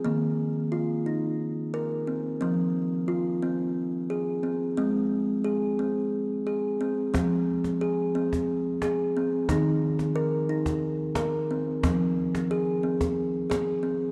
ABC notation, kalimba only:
X:1
M:7/8
L:1/8
Q:1/4=89
K:Fm
V:1 name="Kalimba"
B,2 F E2 B C | C2 F C2 A C | C2 A C2 A C | C2 A C2 A C |
E2 B E2 B C | C2 A C2 A C |]
V:2 name="Kalimba" clef=bass
E,6- E, | F,6- F, | A,6- A, | F,6- F, |
E,6- E, | F,6- F, |]